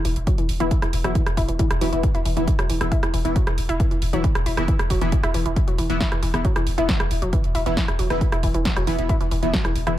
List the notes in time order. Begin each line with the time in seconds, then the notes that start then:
0.05 E1 E3, open hi-hat
0.16 E1, closed hi-hat
0.27 F#3, kick, closed hi-hat
0.38 E1 E3, closed hi-hat
0.49 E1, open hi-hat
0.60 E1 E3 B3 E4, closed hi-hat
0.71 E3, kick, closed hi-hat
0.82 E1 E3, cross-stick, closed hi-hat
0.93 E1, open hi-hat
1.04 E1 E3 F#3 B3 E4, cross-stick, closed hi-hat
1.15 E3, kick, closed hi-hat
1.26 E1, cross-stick, closed hi-hat
1.37 E1 E4, kick, open hi-hat
1.48 E1 E3, closed hi-hat
1.59 E3, kick, closed hi-hat
1.71 E1, cross-stick, closed hi-hat
1.81 E1 E3 F#3 B3 E4, open hi-hat
1.93 E1 E3 B3 E4, closed hi-hat
2.03 kick, closed hi-hat
2.15 E1 E4, closed hi-hat
2.25 E1 E3, open hi-hat
2.37 E1 E3 B3 E4, closed hi-hat
2.48 kick, closed hi-hat
2.59 E1 F#3, cross-stick, closed hi-hat
2.69 E1 E3, open hi-hat
2.81 E1 E3 B3 E4, cross-stick, closed hi-hat
2.92 E4, kick, closed hi-hat
3.03 E1 E3, cross-stick, closed hi-hat
3.14 E1 E3, open hi-hat
3.25 E1 E3 B3 E4, closed hi-hat
3.36 F#3, kick, closed hi-hat
3.47 E1 E3, cross-stick, closed hi-hat
3.58 E1, open hi-hat
3.69 E1 E4, closed hi-hat
3.80 E3, kick, closed hi-hat
3.91 E1 E3, closed hi-hat
4.02 E1, open hi-hat
4.13 E1 E3 F#3 B3 E4, closed hi-hat
4.24 E3, kick, closed hi-hat
4.35 E1, cross-stick, closed hi-hat
4.46 E1 E4, open hi-hat
4.57 E1 E3 B3 E4, cross-stick, closed hi-hat
4.68 E3, kick, closed hi-hat
4.79 E1, cross-stick, closed hi-hat
4.90 E1 F#3, kick, open hi-hat
5.01 E1 E3 B3 E4, closed hi-hat
5.12 kick, closed hi-hat
5.23 E1 E4, cross-stick, closed hi-hat
5.34 E1 E3, open hi-hat
5.45 E1 E3, closed hi-hat
5.56 kick, closed hi-hat
5.68 E1 F#3, closed hi-hat
5.78 E1 E3, open hi-hat
5.90 E1 E3 B3 E4, closed hi-hat
6.00 E4, kick, snare, closed hi-hat
6.12 E1 E3, cross-stick, closed hi-hat
6.22 E1 E3, open hi-hat
6.34 E1 E3 B3 E4, cross-stick, closed hi-hat
6.45 F#3, kick, closed hi-hat
6.56 E1 E3, cross-stick, closed hi-hat
6.67 E1, open hi-hat
6.78 E1 E3 B3 E4, closed hi-hat
6.89 E3, kick, snare, closed hi-hat
7.00 E1 E3, cross-stick, closed hi-hat
7.11 E1, open hi-hat
7.22 E1 F#3, closed hi-hat
7.33 E3, kick, closed hi-hat
7.44 E1, closed hi-hat
7.55 E1 E4, open hi-hat
7.66 E1 E3 B3 E4, closed hi-hat
7.77 E3, kick, snare, closed hi-hat
7.88 E1, cross-stick, closed hi-hat
7.99 E1 F#3, open hi-hat
8.10 E1 E3 B3 E4, cross-stick, closed hi-hat
8.21 kick, closed hi-hat
8.32 E1 E4, cross-stick, closed hi-hat
8.43 E1 E3, kick, open hi-hat
8.54 E1 E3, closed hi-hat
8.65 kick, snare, closed hi-hat
8.76 E1 F#3, cross-stick, closed hi-hat
8.87 E1 E3 B3 E4, open hi-hat
8.98 E1 E3 B3 E4, closed hi-hat
9.09 E4, kick, closed hi-hat
9.21 E1 E3, closed hi-hat
9.31 E1 E3, open hi-hat
9.43 E1 E3 B3 E4, closed hi-hat
9.53 F#3, kick, snare, closed hi-hat
9.65 E1 E3, cross-stick, closed hi-hat
9.75 E1, open hi-hat
9.87 E1 E3 B3 E4, cross-stick, closed hi-hat